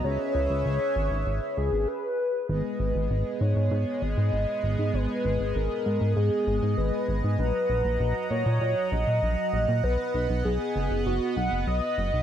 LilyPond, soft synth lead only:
\new Staff \with { instrumentName = "Soft synth lead" } { \time 4/4 \key gis \minor \tempo 4 = 98 cis''2~ cis''8 gis'8 b'4 | b'4. cis''4 dis''4. | b'4 ais'4 gis'8 gis'8 b'4 | b'4. cis''4 dis''4. |
b'4 gis'4 fis'8 fis''8 dis''4 | }